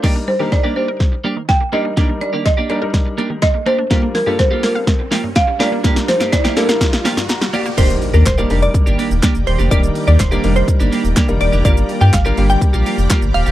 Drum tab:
CC |x---------------|----------------|----------------|----------------|
HH |----------------|x-x-x-x-x-x-x-x-|x-o-x-o-x-o-x-o-|x-o-x-o-x-o-x-o-|
SH |----------------|----------------|----------------|xxxxxxxxxxxxxxxx|
CP |----------------|----------------|----------------|----------------|
SD |o---o---o---o---|o---o---o---o---|o-o-o-o-o-o-o-o-|oooooooooooooo--|
BD |o---o---o---o---|o---o---o---o---|o---o---o---o---|o---o---o-------|

CC |x---------------|----------------|----------------|
HH |x-o-x-o-x-o-x-o-|x-o-x-o-x-o-x-o-|x-o-x-o-x-o-x-o-|
SH |xxxxxxxxxxxxxxxx|xxxxxxxxxxxxxxxx|xxxxxxxxxxxxxxxx|
CP |----x-------x---|----x-------x---|----x-------x---|
SD |----o-------o---|----o-------o---|----o-------o---|
BD |o---o---o---o---|o---o---o---o---|o---o---o---o---|